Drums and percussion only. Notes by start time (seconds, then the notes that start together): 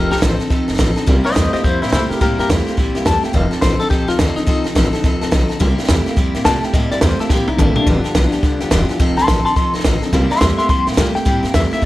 0.12 snare
0.17 snare
0.22 kick, snare, hi-hat pedal
0.40 snare
0.50 kick, snare
0.68 snare
0.74 snare
0.79 kick, snare, hi-hat pedal
0.97 snare
1.07 kick, snare
1.25 snare
1.31 snare
1.36 kick, snare, hi-hat pedal
1.55 snare
1.64 kick, snare
1.82 snare
1.88 snare
1.93 kick, snare, hi-hat pedal
2.11 snare
2.21 kick, snare
2.39 snare
2.50 kick, snare, hi-hat pedal
2.67 snare
2.78 kick, snare
2.95 snare
3.06 kick, snare, hi-hat pedal
3.24 snare
3.34 kick, snare
3.52 snare
3.62 kick, snare, hi-hat pedal
3.80 snare
3.91 kick, snare
4.09 snare
4.19 kick, snare, hi-hat pedal
4.37 snare
4.47 kick, snare
4.65 snare
4.76 kick, snare, hi-hat pedal
4.94 snare
5.04 kick, snare
5.22 snare
5.32 kick, snare, hi-hat pedal
5.50 snare
5.61 kick, snare
5.79 snare
5.84 snare
5.89 kick, snare, hi-hat pedal
6.06 snare
6.16 kick, snare
6.35 snare
6.45 kick, snare, hi-hat pedal
6.63 snare
6.74 kick, snare
6.91 snare
7.01 kick, snare, hi-hat pedal
7.20 snare
7.29 kick, snare
7.48 high tom
7.58 kick, hi-hat pedal, mid tom
7.76 floor tom
7.86 kick, snare
8.04 snare
8.15 kick, snare, hi-hat pedal
8.32 snare
8.43 kick, snare
8.60 snare
8.71 kick, snare, hi-hat pedal
8.89 snare
9.00 kick, snare
9.18 snare
9.28 kick, snare, hi-hat pedal
9.45 snare
9.56 kick, snare
9.74 snare
9.79 snare
9.85 kick, snare, hi-hat pedal
10.02 snare
10.12 kick, snare
10.30 snare
10.36 snare
10.41 kick, snare, hi-hat pedal
10.58 snare
10.69 kick, snare
10.87 snare
10.92 snare
10.97 kick, snare, hi-hat pedal
11.15 snare
11.26 kick, snare
11.44 snare
11.54 kick, snare, hi-hat pedal
11.72 snare
11.82 kick, snare